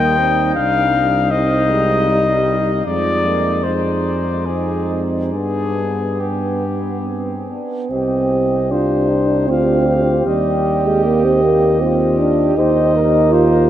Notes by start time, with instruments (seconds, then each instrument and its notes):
Already playing: tuba D#2, trombone section G3, euphonium A#3, french horn section D#4, cornet G5
0.18 euphonium C4
0.56 tuba C2, trombone section G3, euphonium D4, french horn section D#4, cornet F5
1.31 trombone section G3, euphonium C4, french horn section D#4, cornet D#5
1.70 euphonium G#3
2.09 euphonium G3
2.86 tuba F2, euphonium F3, trombone section G#3, french horn section D#4, cornet D5
3.26 euphonium A#3
3.64 trombone section G#3, euphonium G#3, french horn section D#4, cornet C5
4.46 trombone section G#3, euphonium C4, french horn section D#4, cornet G#4
4.90 trombone section G#3
5.33 tuba G2, euphonium B3, trombone section B3, french horn section D4, cornet G#4
6.20 french horn section B3, trombone section B3, cornet G4
7.06 french horn section C4
7.49 euphonium B3, french horn section D4
7.89 tuba C2, euphonium C4, trombone section G4, cornet D#5
8.32 trombone section G4
8.70 euphonium D4, french horn section F4, cornet C5
9.09 french horn section D#4
9.47 tuba D2, euphonium C4, trombone section F4, french horn section G4, cornet F5
9.87 french horn section F4, trombone section G4
10.25 tuba D#2, euphonium G3, french horn section G4, cornet D#5
10.86 euphonium G#3
11.04 euphonium A#3, trombone section G4
11.25 euphonium C4
11.44 euphonium A#3
11.81 euphonium C4, trombone section F4, french horn section G4
12.19 euphonium D4
12.56 tuba D#2, euphonium D#4, trombone section G4, french horn section C5, cornet D#5
12.95 trombone section G4, french horn section A#4
13.32 euphonium F4, cornet C5